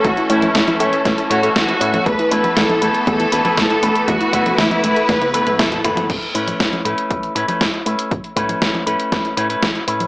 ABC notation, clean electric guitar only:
X:1
M:4/4
L:1/16
Q:1/4=119
K:Emix
V:1 name="Clean electric guitar"
z2 [A,CEc]4 [A,CEc]4 [A,CEc] [A,CEc] z2 [A,CEc]2 | z2 [A,B,EB]4 [A,B,EB]4 [A,B,EB] [A,B,EB] z2 [A,B,EB]2 | z2 [A,B,EB]4 [A,B,EB]4 [A,B,EB] [A,B,EB] z2 [A,B,EB]2 | [K:A] z2 [A,CEB]4 [A,CEB]4 [A,CEB] [A,CEB] z2 [A,CEB]2 |
z2 [A,CEB]4 [A,CEB]4 [A,CEB] [A,CEB] z2 [A,CEB]2 |]